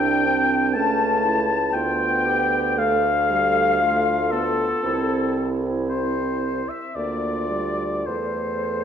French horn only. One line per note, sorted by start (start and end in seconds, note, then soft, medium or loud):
0.00 0.27 D4 medium
0.26 0.77 C4 medium
0.75 1.57 A3 medium
1.74 2.80 B3 medium
2.78 3.32 A3 medium
3.31 3.83 G3 medium
3.81 4.34 A3 medium
4.32 4.83 B3 medium
4.83 6.63 C4 medium
6.96 7.52 A#3 medium
7.50 8.07 G3 medium
8.05 8.84 A3 medium